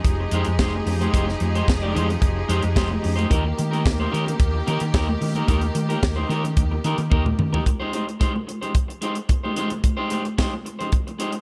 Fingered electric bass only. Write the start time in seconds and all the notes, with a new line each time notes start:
0.05 F1
0.32 F2
0.47 F2
0.59 F1
0.86 F2
1.14 F1
1.41 F2
1.68 F1
1.95 F2
2.22 F1
2.49 F2
2.64 F2
2.76 F1
3.05 F2
3.31 D#2
3.59 D#3
3.86 D#2
4.13 D#3
4.40 D#2
4.68 D#3
4.81 D#3
4.94 D#2
5.21 D#3
5.49 D#2
5.75 D#3
6.03 D#2
6.29 D#3
6.57 D#2
6.84 D#3
6.98 D#3
7.12 D#2
7.39 D#3